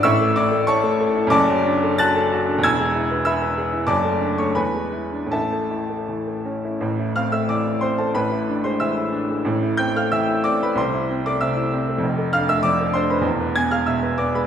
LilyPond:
<<
  \new Staff \with { instrumentName = "Upright piano" } { \time 2/4 \key a \major \tempo 4 = 93 <e'' cis''' e'''>8 <d'' d'''>8 <cis'' a'' cis'''>4 | <d'' a'' d'''>4 <a'' fis''' a'''>4 | <gis'' e''' gis'''>4 <e'' b'' e'''>4 | <d'' a'' d'''>8. <cis'' cis'''>16 <b' gis'' b''>4 |
<a' e'' a''>4. r8 | \key a \minor r8 <f'' f'''>16 <e'' e'''>16 <d'' d'''>8 <c'' c'''>16 <a' a''>16 | <b' b''>8. <c'' c'''>16 <e'' e'''>4 | r8 <g'' g'''>16 <f'' f'''>16 <e'' e'''>8 <d'' d'''>16 <b' b''>16 |
<c'' c'''>8. <d'' d'''>16 <e'' e'''>4 | r8 <f'' f'''>16 <e'' e'''>16 <d'' d'''>8 <c'' c'''>16 <b' b''>16 | r8 <gis'' gis'''>16 <f'' f'''>16 <e'' e'''>8 <d'' d'''>16 <b' b''>16 | }
  \new Staff \with { instrumentName = "Upright piano" } { \time 2/4 \key a \major <a,, a,>16 a16 e'16 a16 e'16 a16 a'16 e'16 | <fis,, fis,>16 fis16 d'16 a'16 fis'16 a'16 fis'16 d'16 | <e,, e,>16 gis16 e'16 b'16 gis'16 b'16 gis'16 e'16 | <fis,, fis,>16 a16 d'16 a16 e,16 gis16 e'16 d'16 |
<a,, a,>16 a16 e'16 a16 e16 a16 cis'16 e'16 | \key a \minor <a,, a,>16 e'16 c'16 a16 e16 e'16 c'16 a16 | <a,, a,>16 e'16 d'16 gis16 e16 e'16 d'16 gis16 | <a,, a,>16 e'16 c'16 a16 e16 e'16 c'16 a16 |
c,16 e'16 c'16 a16 c16 e'16 c'16 a16 | <f,, f,>16 a'16 d'16 a16 f16 a'16 d'16 a16 | <e,, e,>16 b'16 b16 gis16 b,16 b'16 b16 gis16 | }
>>